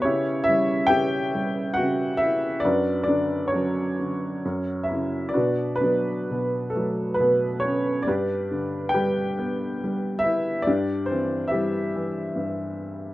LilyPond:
<<
  \new Staff \with { instrumentName = "Upright piano" } { \time 3/4 \key b \minor \tempo 4 = 69 <cis' e' g' cis''>8 <e' e''>8 <g' e'' g''>4 <fis' fis''>8 <e' e''>8 | <d' fis' b' d''>8 <d' d''>8 <cis' fis' cis''>4. <e' e''>8 | <d' fis' b' d''>8 <b d' b'>4 <a a'>8 <b b'>8 <cis' cis''>8 | <d' g' b' d''>4 <g' b' g''>4. <e' e''>8 |
<d' g' d''>8 <c' c''>8 <e' g' e''>2 | }
  \new Staff \with { instrumentName = "Upright piano" } { \clef bass \time 3/4 \key b \minor cis8 g8 cis8 g8 cis4 | fis,8 d8 fis8 d8 fis,8 cis8 | b,8 fis8 b,8 fis8 b,4 | g,8 d8 g8 b8 g4 |
g,8 e8 g8 e8 g,4 | }
>>